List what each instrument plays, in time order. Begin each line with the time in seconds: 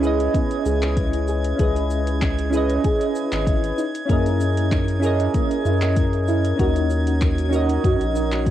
Already playing: analog synth bass C#2, synth keys G#4 B4 D#5, synth texture G#6
0.00 synth keys C#4 E4 G#4, cabasa
0.05 synth keys B4 D#5
0.20 closed hi-hat, cabasa
0.34 synth pluck B3, kick, closed hi-hat, cabasa
0.51 closed hi-hat, cabasa
0.66 analog synth bass C#2, synth pluck G#4, cabasa
0.82 clap, closed hi-hat, cabasa
0.97 kick, closed hi-hat, cabasa
1.13 closed hi-hat, cabasa
1.28 synth pluck G#4, cabasa
1.44 closed hi-hat, cabasa
1.56 analog synth bass C#2, synth keys C#4 E4 G#4, synth pluck G#4, kick, closed hi-hat, cabasa
1.61 synth keys B4 D#5
1.76 closed hi-hat, cabasa
1.90 cabasa
2.07 closed hi-hat, cabasa
2.22 kick, clap, closed hi-hat, cabasa
2.39 closed hi-hat, cabasa
2.50 synth keys C#4 E4 G#4, cabasa
2.55 synth keys B4 D#5
2.69 closed hi-hat, cabasa
2.84 synth pluck G#4, kick, closed hi-hat, cabasa
3.01 closed hi-hat, cabasa
3.16 cabasa
3.32 analog synth bass G#1, clap, closed hi-hat, cabasa
3.47 kick, closed hi-hat, cabasa
3.64 closed hi-hat, cabasa
3.78 synth pluck D#4, cabasa
3.95 closed hi-hat, cabasa
4.06 analog synth bass F#2, synth keys C#4 E4 G#4, kick
4.10 synth pluck A#3, synth keys A#4 D#5, closed hi-hat, cabasa
4.26 closed hi-hat, cabasa
4.41 cabasa
4.58 closed hi-hat, cabasa
4.72 synth pluck D#4, kick, clap, closed hi-hat, cabasa
4.88 closed hi-hat, cabasa
5.00 synth keys C#4 E4 G#4, cabasa
5.04 synth keys A#4 D#5
5.20 closed hi-hat, cabasa
5.34 synth pluck A#3, kick, closed hi-hat, cabasa
5.51 closed hi-hat, cabasa
5.65 analog synth bass F#2, synth pluck E4, cabasa
5.82 clap, closed hi-hat, cabasa
5.97 kick, closed hi-hat, cabasa
6.13 closed hi-hat, cabasa
6.28 synth pluck E4, cabasa
6.45 closed hi-hat, cabasa
6.56 analog synth bass D#2, synth keys C#4 D#4 F#4, kick, closed hi-hat, cabasa
6.60 synth pluck F#4, synth keys A#4 D#5
6.76 closed hi-hat, cabasa
6.90 cabasa
7.07 closed hi-hat, cabasa
7.22 kick, clap, closed hi-hat, cabasa
7.38 closed hi-hat, cabasa
7.49 synth keys C#4 D#4 F#4, cabasa
7.54 synth keys A#4 D#5
7.69 closed hi-hat, cabasa
7.84 analog synth bass F#2, synth pluck F#4, kick, closed hi-hat, cabasa
8.01 analog synth bass A#1, closed hi-hat, cabasa
8.16 synth pluck D#4, cabasa
8.32 clap, closed hi-hat, cabasa
8.46 analog synth bass F#2, kick, closed hi-hat, cabasa